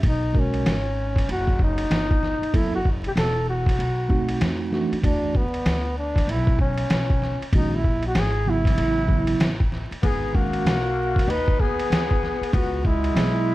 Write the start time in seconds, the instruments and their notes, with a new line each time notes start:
0.03 upright bass B1, kick, ride
0.08 flugelhorn D#4
0.33 tine electric piano G#3 C#4 F#4 A#4, kick
0.39 flugelhorn C#4
0.54 ride
0.66 upright bass G#1, snare, hi-hat pedal, ride
1.16 kick, snare, ride
1.29 upright bass F#1, flugelhorn F#4, ride
1.48 kick
1.59 flugelhorn D#4, kick
1.78 ride
1.91 upright bass G1, snare, hi-hat pedal, ride
2.11 kick
2.23 snare
2.42 muted upright bass stroke, ride
2.53 upright bass F#1, tine electric piano F#3 B3 E4 A4, flugelhorn E4, kick, ride
2.75 flugelhorn F#4
2.85 kick
3.04 flugelhorn G4, ride
3.16 upright bass E1, flugelhorn A4, snare, hi-hat pedal, ride
3.49 flugelhorn F#4
3.66 kick, snare, ride
3.79 upright bass B1, ride
4.08 tine electric piano A3 C4 D#4 F#4, kick
4.28 ride
4.41 upright bass F2, snare, hi-hat pedal, ride
4.71 tine electric piano E3 A3 D4 F#4, snare
4.92 muted upright bass stroke, ride
5.02 upright bass E2, tine electric piano E3 A3 D4 F#4, flugelhorn D4, kick, ride
5.35 flugelhorn B3, kick
5.54 ride
5.65 upright bass D2, snare, hi-hat pedal, ride
5.98 flugelhorn D4
6.16 kick, snare, ride
6.27 upright bass B1, flugelhorn E4, ride
6.47 kick
6.59 flugelhorn C#4, kick
6.78 ride
6.90 upright bass B1, snare, hi-hat pedal, ride
7.10 kick
7.22 snare
7.41 muted upright bass stroke, ride
7.52 upright bass A#1, tine electric piano D#3 G#3 C#4 F#4, flugelhorn D#4, kick, ride
7.75 flugelhorn E4
7.84 kick
8.03 flugelhorn F#4, ride
8.15 upright bass G#1, flugelhorn G#4, snare, hi-hat pedal, ride
8.45 tine electric piano C#3 F#3 B3 E4
8.50 flugelhorn E4
8.65 kick, snare, ride
8.77 upright bass A1, ride
9.07 tine electric piano C#3 F#3 B3 E4, kick
9.27 ride
9.40 upright bass A1, snare, hi-hat pedal, ride
9.60 kick
9.72 snare
9.91 muted upright bass stroke, ride
10.02 upright bass G#1, tenor saxophone B3, flugelhorn G#4, kick, ride
10.33 tine electric piano D#3 G#3 C#4 F#4, tenor saxophone A#3, flugelhorn F#4, kick
10.53 ride
10.65 upright bass B1, snare, hi-hat pedal, ride
11.16 kick, snare, ride
11.27 upright bass D#2, tenor saxophone D#4, flugelhorn B4, ride
11.48 kick
11.59 tenor saxophone B3, flugelhorn G#4, kick
11.79 ride
11.90 upright bass D2, snare, hi-hat pedal, ride
12.11 kick
12.23 snare
12.41 muted upright bass stroke, ride
12.53 upright bass C#2, tenor saxophone B3, flugelhorn F#4, kick, ride
12.84 tenor saxophone G#3, flugelhorn E4, kick
13.04 ride
13.14 upright bass B1, tine electric piano F#3 B3 E4 G#4, snare, hi-hat pedal, ride